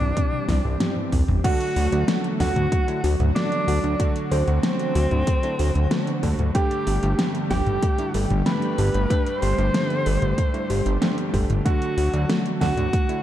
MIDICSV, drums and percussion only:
0, 0, Header, 1, 2, 480
1, 0, Start_track
1, 0, Tempo, 638298
1, 1085, Time_signature, 4, 2, 24, 8
1, 9947, End_track
2, 0, Start_track
2, 0, Title_t, "Drums"
2, 6, Note_on_c, 9, 47, 90
2, 81, Note_off_c, 9, 47, 0
2, 125, Note_on_c, 9, 36, 112
2, 126, Note_on_c, 9, 42, 94
2, 126, Note_on_c, 9, 48, 61
2, 200, Note_off_c, 9, 36, 0
2, 201, Note_off_c, 9, 42, 0
2, 201, Note_off_c, 9, 48, 0
2, 246, Note_on_c, 9, 48, 57
2, 321, Note_off_c, 9, 48, 0
2, 365, Note_on_c, 9, 36, 59
2, 365, Note_on_c, 9, 38, 59
2, 365, Note_on_c, 9, 46, 81
2, 440, Note_off_c, 9, 36, 0
2, 441, Note_off_c, 9, 38, 0
2, 441, Note_off_c, 9, 46, 0
2, 485, Note_on_c, 9, 47, 68
2, 561, Note_off_c, 9, 47, 0
2, 605, Note_on_c, 9, 38, 107
2, 605, Note_on_c, 9, 42, 91
2, 605, Note_on_c, 9, 47, 83
2, 680, Note_off_c, 9, 38, 0
2, 680, Note_off_c, 9, 42, 0
2, 680, Note_off_c, 9, 47, 0
2, 725, Note_on_c, 9, 47, 61
2, 800, Note_off_c, 9, 47, 0
2, 845, Note_on_c, 9, 36, 62
2, 846, Note_on_c, 9, 45, 99
2, 846, Note_on_c, 9, 46, 82
2, 921, Note_off_c, 9, 36, 0
2, 921, Note_off_c, 9, 45, 0
2, 921, Note_off_c, 9, 46, 0
2, 966, Note_on_c, 9, 45, 87
2, 966, Note_on_c, 9, 47, 92
2, 1041, Note_off_c, 9, 45, 0
2, 1041, Note_off_c, 9, 47, 0
2, 1085, Note_on_c, 9, 36, 124
2, 1087, Note_on_c, 9, 42, 98
2, 1087, Note_on_c, 9, 49, 106
2, 1160, Note_off_c, 9, 36, 0
2, 1162, Note_off_c, 9, 42, 0
2, 1162, Note_off_c, 9, 49, 0
2, 1206, Note_on_c, 9, 42, 45
2, 1282, Note_off_c, 9, 42, 0
2, 1326, Note_on_c, 9, 46, 85
2, 1401, Note_off_c, 9, 46, 0
2, 1447, Note_on_c, 9, 42, 43
2, 1522, Note_off_c, 9, 42, 0
2, 1565, Note_on_c, 9, 38, 118
2, 1565, Note_on_c, 9, 42, 99
2, 1640, Note_off_c, 9, 38, 0
2, 1640, Note_off_c, 9, 42, 0
2, 1687, Note_on_c, 9, 42, 43
2, 1762, Note_off_c, 9, 42, 0
2, 1805, Note_on_c, 9, 36, 64
2, 1806, Note_on_c, 9, 38, 64
2, 1806, Note_on_c, 9, 46, 84
2, 1881, Note_off_c, 9, 36, 0
2, 1882, Note_off_c, 9, 38, 0
2, 1882, Note_off_c, 9, 46, 0
2, 1926, Note_on_c, 9, 42, 40
2, 1926, Note_on_c, 9, 47, 90
2, 2001, Note_off_c, 9, 42, 0
2, 2001, Note_off_c, 9, 47, 0
2, 2045, Note_on_c, 9, 36, 115
2, 2046, Note_on_c, 9, 42, 98
2, 2120, Note_off_c, 9, 36, 0
2, 2121, Note_off_c, 9, 42, 0
2, 2167, Note_on_c, 9, 42, 41
2, 2242, Note_off_c, 9, 42, 0
2, 2286, Note_on_c, 9, 46, 83
2, 2361, Note_off_c, 9, 46, 0
2, 2406, Note_on_c, 9, 42, 42
2, 2406, Note_on_c, 9, 47, 98
2, 2482, Note_off_c, 9, 42, 0
2, 2482, Note_off_c, 9, 47, 0
2, 2527, Note_on_c, 9, 38, 118
2, 2527, Note_on_c, 9, 42, 97
2, 2602, Note_off_c, 9, 38, 0
2, 2602, Note_off_c, 9, 42, 0
2, 2646, Note_on_c, 9, 42, 41
2, 2722, Note_off_c, 9, 42, 0
2, 2768, Note_on_c, 9, 46, 84
2, 2843, Note_off_c, 9, 46, 0
2, 2887, Note_on_c, 9, 42, 40
2, 2962, Note_off_c, 9, 42, 0
2, 3005, Note_on_c, 9, 36, 123
2, 3006, Note_on_c, 9, 42, 103
2, 3080, Note_off_c, 9, 36, 0
2, 3081, Note_off_c, 9, 42, 0
2, 3126, Note_on_c, 9, 42, 43
2, 3201, Note_off_c, 9, 42, 0
2, 3245, Note_on_c, 9, 46, 80
2, 3320, Note_off_c, 9, 46, 0
2, 3366, Note_on_c, 9, 42, 40
2, 3441, Note_off_c, 9, 42, 0
2, 3485, Note_on_c, 9, 38, 123
2, 3485, Note_on_c, 9, 42, 101
2, 3560, Note_off_c, 9, 38, 0
2, 3560, Note_off_c, 9, 42, 0
2, 3606, Note_on_c, 9, 42, 43
2, 3681, Note_off_c, 9, 42, 0
2, 3725, Note_on_c, 9, 46, 81
2, 3800, Note_off_c, 9, 46, 0
2, 3845, Note_on_c, 9, 42, 39
2, 3845, Note_on_c, 9, 47, 89
2, 3920, Note_off_c, 9, 42, 0
2, 3920, Note_off_c, 9, 47, 0
2, 3964, Note_on_c, 9, 42, 106
2, 3965, Note_on_c, 9, 36, 127
2, 4039, Note_off_c, 9, 42, 0
2, 4040, Note_off_c, 9, 36, 0
2, 4085, Note_on_c, 9, 42, 43
2, 4160, Note_off_c, 9, 42, 0
2, 4205, Note_on_c, 9, 46, 83
2, 4281, Note_off_c, 9, 46, 0
2, 4327, Note_on_c, 9, 42, 44
2, 4402, Note_off_c, 9, 42, 0
2, 4445, Note_on_c, 9, 38, 119
2, 4445, Note_on_c, 9, 42, 92
2, 4520, Note_off_c, 9, 38, 0
2, 4520, Note_off_c, 9, 42, 0
2, 4567, Note_on_c, 9, 42, 41
2, 4642, Note_off_c, 9, 42, 0
2, 4685, Note_on_c, 9, 36, 69
2, 4685, Note_on_c, 9, 46, 83
2, 4760, Note_off_c, 9, 36, 0
2, 4760, Note_off_c, 9, 46, 0
2, 4805, Note_on_c, 9, 42, 41
2, 4805, Note_on_c, 9, 47, 89
2, 4880, Note_off_c, 9, 42, 0
2, 4880, Note_off_c, 9, 47, 0
2, 4925, Note_on_c, 9, 36, 127
2, 4925, Note_on_c, 9, 42, 94
2, 5000, Note_off_c, 9, 36, 0
2, 5000, Note_off_c, 9, 42, 0
2, 5046, Note_on_c, 9, 42, 44
2, 5121, Note_off_c, 9, 42, 0
2, 5165, Note_on_c, 9, 46, 81
2, 5241, Note_off_c, 9, 46, 0
2, 5285, Note_on_c, 9, 42, 43
2, 5360, Note_off_c, 9, 42, 0
2, 5405, Note_on_c, 9, 38, 126
2, 5405, Note_on_c, 9, 42, 94
2, 5480, Note_off_c, 9, 38, 0
2, 5480, Note_off_c, 9, 42, 0
2, 5525, Note_on_c, 9, 42, 44
2, 5600, Note_off_c, 9, 42, 0
2, 5645, Note_on_c, 9, 36, 67
2, 5645, Note_on_c, 9, 38, 65
2, 5645, Note_on_c, 9, 46, 81
2, 5720, Note_off_c, 9, 36, 0
2, 5720, Note_off_c, 9, 38, 0
2, 5720, Note_off_c, 9, 46, 0
2, 5764, Note_on_c, 9, 42, 39
2, 5764, Note_on_c, 9, 47, 86
2, 5840, Note_off_c, 9, 42, 0
2, 5840, Note_off_c, 9, 47, 0
2, 5885, Note_on_c, 9, 36, 127
2, 5885, Note_on_c, 9, 42, 98
2, 5960, Note_off_c, 9, 36, 0
2, 5960, Note_off_c, 9, 42, 0
2, 6004, Note_on_c, 9, 42, 42
2, 6080, Note_off_c, 9, 42, 0
2, 6124, Note_on_c, 9, 46, 83
2, 6199, Note_off_c, 9, 46, 0
2, 6245, Note_on_c, 9, 42, 43
2, 6245, Note_on_c, 9, 47, 90
2, 6320, Note_off_c, 9, 42, 0
2, 6320, Note_off_c, 9, 47, 0
2, 6363, Note_on_c, 9, 38, 124
2, 6363, Note_on_c, 9, 42, 92
2, 6438, Note_off_c, 9, 38, 0
2, 6438, Note_off_c, 9, 42, 0
2, 6484, Note_on_c, 9, 42, 41
2, 6559, Note_off_c, 9, 42, 0
2, 6605, Note_on_c, 9, 46, 77
2, 6680, Note_off_c, 9, 46, 0
2, 6726, Note_on_c, 9, 42, 43
2, 6801, Note_off_c, 9, 42, 0
2, 6845, Note_on_c, 9, 36, 125
2, 6847, Note_on_c, 9, 42, 93
2, 6921, Note_off_c, 9, 36, 0
2, 6922, Note_off_c, 9, 42, 0
2, 6967, Note_on_c, 9, 42, 42
2, 7042, Note_off_c, 9, 42, 0
2, 7086, Note_on_c, 9, 46, 79
2, 7162, Note_off_c, 9, 46, 0
2, 7208, Note_on_c, 9, 42, 39
2, 7283, Note_off_c, 9, 42, 0
2, 7327, Note_on_c, 9, 38, 127
2, 7327, Note_on_c, 9, 42, 92
2, 7403, Note_off_c, 9, 38, 0
2, 7403, Note_off_c, 9, 42, 0
2, 7447, Note_on_c, 9, 42, 41
2, 7522, Note_off_c, 9, 42, 0
2, 7566, Note_on_c, 9, 46, 76
2, 7641, Note_off_c, 9, 46, 0
2, 7686, Note_on_c, 9, 42, 37
2, 7686, Note_on_c, 9, 47, 88
2, 7761, Note_off_c, 9, 42, 0
2, 7761, Note_off_c, 9, 47, 0
2, 7805, Note_on_c, 9, 36, 127
2, 7806, Note_on_c, 9, 42, 96
2, 7880, Note_off_c, 9, 36, 0
2, 7881, Note_off_c, 9, 42, 0
2, 7928, Note_on_c, 9, 42, 41
2, 8003, Note_off_c, 9, 42, 0
2, 8046, Note_on_c, 9, 46, 76
2, 8122, Note_off_c, 9, 46, 0
2, 8167, Note_on_c, 9, 42, 40
2, 8242, Note_off_c, 9, 42, 0
2, 8286, Note_on_c, 9, 38, 120
2, 8286, Note_on_c, 9, 42, 89
2, 8361, Note_off_c, 9, 38, 0
2, 8361, Note_off_c, 9, 42, 0
2, 8406, Note_on_c, 9, 42, 40
2, 8481, Note_off_c, 9, 42, 0
2, 8525, Note_on_c, 9, 36, 69
2, 8526, Note_on_c, 9, 46, 75
2, 8600, Note_off_c, 9, 36, 0
2, 8602, Note_off_c, 9, 46, 0
2, 8646, Note_on_c, 9, 42, 40
2, 8646, Note_on_c, 9, 47, 90
2, 8721, Note_off_c, 9, 42, 0
2, 8721, Note_off_c, 9, 47, 0
2, 8765, Note_on_c, 9, 36, 121
2, 8766, Note_on_c, 9, 42, 89
2, 8841, Note_off_c, 9, 36, 0
2, 8841, Note_off_c, 9, 42, 0
2, 8887, Note_on_c, 9, 42, 39
2, 8962, Note_off_c, 9, 42, 0
2, 9006, Note_on_c, 9, 46, 76
2, 9082, Note_off_c, 9, 46, 0
2, 9126, Note_on_c, 9, 42, 37
2, 9201, Note_off_c, 9, 42, 0
2, 9246, Note_on_c, 9, 38, 120
2, 9246, Note_on_c, 9, 42, 91
2, 9321, Note_off_c, 9, 38, 0
2, 9321, Note_off_c, 9, 42, 0
2, 9367, Note_on_c, 9, 42, 41
2, 9442, Note_off_c, 9, 42, 0
2, 9485, Note_on_c, 9, 36, 64
2, 9486, Note_on_c, 9, 38, 64
2, 9486, Note_on_c, 9, 46, 79
2, 9560, Note_off_c, 9, 36, 0
2, 9561, Note_off_c, 9, 38, 0
2, 9561, Note_off_c, 9, 46, 0
2, 9607, Note_on_c, 9, 42, 38
2, 9607, Note_on_c, 9, 47, 92
2, 9682, Note_off_c, 9, 42, 0
2, 9682, Note_off_c, 9, 47, 0
2, 9725, Note_on_c, 9, 36, 118
2, 9726, Note_on_c, 9, 42, 89
2, 9800, Note_off_c, 9, 36, 0
2, 9801, Note_off_c, 9, 42, 0
2, 9845, Note_on_c, 9, 42, 39
2, 9920, Note_off_c, 9, 42, 0
2, 9947, End_track
0, 0, End_of_file